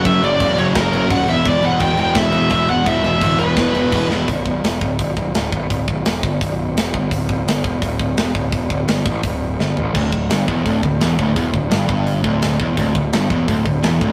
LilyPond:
<<
  \new Staff \with { instrumentName = "Lead electric guitar" } { \time 4/4 \key e \dorian \tempo 4 = 170 e''8 d''4 cis''8 ais'4 fis''8 e''8 | d''8 fis''8 g''8 g''8 e''4 e''8 fis''8 | e''4. b'2 r8 | \key d \major r1 |
r1 | r1 | r1 | r1 |
r1 | r1 | }
  \new Staff \with { instrumentName = "Distorted electric guitar" } { \clef bass \time 4/4 \key e \dorian <fis, cis fis>8 <fis, cis fis>8 <fis, cis fis>8 <fis, cis fis>8 <fis, cis fis>8 <fis, cis fis>8 <fis, cis fis>8 <e, b, e>8 | <e, b, e>8 <e, b, e>8 <e, b, e>8 <e, b, e>8 <e, b, e>8 <e, b, e>8 <e, b, e>8 <e, b, e>8 | <e, b, e>8 <e, b, e>8 <e, b, e>8 <e, b, e>8 <e, b, e>8 <e, b, e>8 <e, b, e>8 <e, b, e>8 | \key d \major r1 |
r1 | r1 | r1 | d,8 d,8 g,8 e,8 d,8 d,8 e,8 d,8 |
e,8 d,8 g,8 g,4 d,4 e,8 | d,8 d,8 g,8 e,8 d,8 d,8 e,8 d,8 | }
  \new Staff \with { instrumentName = "Picked electric bass" } { \clef bass \time 4/4 \key e \dorian fis,,8 fis,,8 e,,8 fis,,8 fis,,8 fis,,8 dis,,8 e,,8 | e,,8 e,,8 e,,4 e,,8 e,,8 e,,8 e,,8 | e,,8 e,,8 d,,8 e,,8 e,,8 e,,8 e,,8 e,,8 | \key d \major b,,,8 b,,,8 e,,8 d,,8 b,,,8 b,,,8 d,,8 b,,,8 |
d,,8 b,,,8 e,,8 g,,8 b,,,4 e,,8 g,,8 | d,,8 d,,8 g,,8 e,,8 d,,8 d,,8 e,,8 d,,8 | e,,8 d,,8 g,,8 a,,8 d,,4 g,,8 a,,8 | d,,8 d,,8 g,,8 e,,8 d,,8 d,,8 e,,8 d,,8 |
e,,8 d,,8 g,,8 g,,4 d,,4 e,,8 | d,,8 d,,8 g,,8 e,,8 d,,8 d,,8 e,,8 d,,8 | }
  \new DrumStaff \with { instrumentName = "Drums" } \drummode { \time 4/4 <cymc bd>8 cymc8 <cymc bd>8 cymc8 <cymc bd sn>8 cymc8 <cymc bd>8 cymc8 | <cymc bd>8 cymc8 <cymc bd>8 cymc8 <cymc bd sn>8 cymc8 <cymc bd>8 cymc8 | <cymc bd>8 cymc8 <cymc bd>8 cymc8 <cymc bd sn>8 cymc8 <cymc bd>8 sn8 | <hho bd>8 bd8 <hho sn>8 bd8 <hho bd>8 bd8 <hho sn>8 bd8 |
<hho bd>8 bd8 <hho sn>8 bd8 <hho bd>4 <hho sn>8 bd8 | <hho bd>8 bd8 <hho sn>8 bd8 <hho bd>8 bd8 <hho sn>8 bd8 | <hho bd>8 bd8 <hho sn>8 bd8 <hho bd>4 sn8 tomfh8 | <cymc bd>8 bd8 <hho sn>8 bd8 <hho bd>8 bd8 <hho sn>8 bd8 |
<hho bd>8 bd8 <hho sn>8 bd8 hho8 bd8 <hho sn>8 bd8 | <hho bd>8 bd8 <hho sn>8 bd8 <hho bd>8 bd8 <hho sn>8 bd8 | }
>>